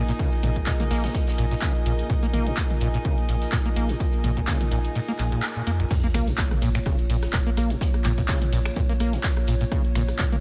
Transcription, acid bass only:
0.09 0.12 A#2 loud
0.19 0.30 C#3 medium
0.43 0.50 A#2 medium
0.67 0.71 A#2 loud
0.80 0.83 A#3 loud
0.91 1.05 A#3 loud
1.04 1.10 A#2 loud
1.38 1.45 A#2 medium
1.51 1.55 A#2 loud
1.62 1.73 C#3 medium
1.86 1.93 A#2 medium
2.10 2.14 A#2 loud
2.23 2.26 A#3 loud
2.34 2.48 A#3 loud
2.47 2.52 A#2 loud
2.81 2.88 A#2 loud
2.94 2.98 A#2 loud
3.05 3.16 C#3 medium
3.29 3.36 A#2 medium
3.53 3.57 A#2 loud
3.66 3.69 A#3 loud
3.76 3.91 A#3 loud
3.89 3.95 A#2 loud
4.24 4.31 A#2 loud
4.37 4.41 A#2 medium
4.48 4.59 C#3 medium
4.72 4.79 A#2 medium
4.95 5.00 A#2 loud
5.08 5.12 A#3 loud
5.19 5.30 A#2 medium
5.32 5.41 A#2 medium
5.56 5.62 A#2 medium
5.67 5.71 A#3 loud
5.80 5.86 A#1 loud
5.91 5.95 A#2 loud
6.04 6.07 A#3 loud
6.14 6.29 A#3 loud
6.27 6.33 A#2 loud
6.62 6.69 A#2 loud
6.75 6.79 A#2 loud
6.86 6.97 C#3 medium
7.10 7.17 A#2 medium
7.34 7.38 A#2 loud
7.46 7.50 A#3 loud
7.57 7.72 A#3 loud
7.70 7.76 A#2 loud
8.05 8.12 A#2 loud
8.18 8.22 A#2 loud
8.29 8.40 C#3 medium
8.53 8.60 A#2 medium
8.76 8.81 A#2 loud
8.89 8.93 A#3 loud
9.00 9.15 A#3 medium
9.13 9.19 A#2 loud
9.48 9.55 A#2 loud
9.61 9.64 A#2 loud
9.72 9.82 C#3 medium
9.95 10.03 A#2 medium
10.19 10.24 A#2 loud
10.32 10.36 A#3 loud

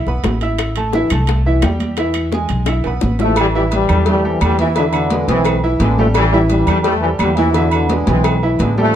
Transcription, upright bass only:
0.07 0.23 B1 medium
0.24 1.05 A1 medium
1.11 1.60 C2 medium
1.63 2.45 E2 loud
2.50 2.83 B1 medium
2.86 3.02 B1 medium
3.03 3.84 A1 medium
3.89 4.38 E2 loud
4.42 5.23 E2 medium
5.28 5.77 B1 medium
5.80 6.62 A1 loud
6.67 7.16 E2 loud
7.19 8.01 E2 medium
8.08 8.56 B1 loud
8.60 8.95 A1 medium

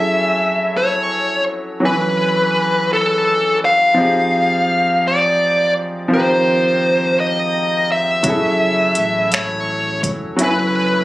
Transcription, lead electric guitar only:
0.00 0.80 E5 medium
0.77 1.43 C#5 medium
1.85 2.93 B4 medium
2.93 3.58 A4 medium
3.65 5.10 F5 loud
5.07 5.72 D5 medium
6.14 7.20 C5 medium
7.20 7.91 D#5 medium
7.92 9.34 E5 medium
9.34 10.00 C#5 medium
10.43 11.04 B4 medium

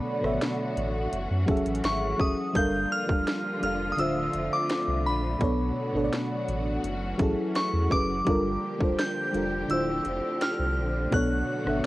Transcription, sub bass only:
0.23 0.38 G#1 medium
0.77 1.07 A1 medium
1.12 1.28 F#1 loud
1.30 1.45 F#2 medium
1.48 1.63 F#1 loud
1.66 1.81 A1 medium
1.84 2.14 G#1 loud
2.20 2.35 F#1 loud
2.55 2.86 G1 loud
3.09 3.24 E1 medium
3.62 3.93 F1 medium
3.98 4.29 D1 loud
4.34 4.49 F1 medium
4.87 5.07 C2 medium
5.05 5.36 A#1 loud
5.41 5.71 B1 loud
5.94 6.10 G#1 medium
6.48 6.79 A1 medium
6.84 7.14 F#1 loud
7.19 7.35 A1 medium
7.73 7.88 E2 medium
7.91 8.21 F#1 medium
8.27 8.57 G1 loud
8.80 8.96 E1 loud
9.34 9.64 F1 medium
9.70 10.00 D1 loud
10.05 10.20 F1 medium
10.59 10.78 C2 medium
10.77 11.07 A#1 medium
11.12 11.43 B1 loud
11.66 11.81 G#1 medium

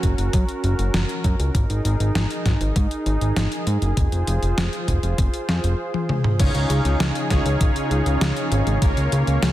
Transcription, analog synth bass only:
0.03 0.14 F#1 medium
0.18 0.29 F#1 medium
0.33 0.45 F#2 loud
0.64 0.75 F#1 medium
0.79 0.90 F#1 medium
0.94 1.05 F#1 loud
1.24 1.36 F#2 medium
1.39 1.51 C#2 medium
1.55 1.66 G#1 loud
1.70 1.81 G#1 medium
1.85 1.96 G#1 medium
2.00 2.11 G#1 medium
2.15 2.26 G#1 loud
2.46 2.57 G#1 medium
2.61 2.72 G#1 medium
2.76 2.87 G#2 loud
3.06 3.17 G#1 medium
3.21 3.32 G#1 medium
3.36 3.48 G#1 loud
3.67 3.78 G#2 medium
3.82 3.93 F#1 medium
3.97 4.08 F1 loud
4.12 4.23 F1 medium
4.27 4.39 F1 medium
4.43 4.54 F1 medium
4.58 4.69 F1 loud
4.88 4.99 F1 medium
5.03 5.14 F1 medium
5.18 5.30 F1 loud
5.49 5.60 F2 medium
5.64 5.75 F1 medium
6.40 6.51 C#2 loud
6.55 6.66 C#2 medium
6.70 6.81 C#2 medium
6.85 6.96 C#2 medium
7.00 7.11 C#2 loud
7.30 7.42 C#2 loud
7.46 7.57 C#2 medium
7.61 7.72 G#1 loud
7.91 8.02 C#2 medium
8.06 8.17 C#2 medium
8.21 8.32 C#2 loud
8.52 8.63 G#1 medium
8.67 8.78 G#1 medium
8.82 8.93 C#2 loud
8.97 9.08 C#2 medium
9.12 9.23 C#2 medium
9.27 9.39 C#2 medium
9.43 9.52 C#2 loud

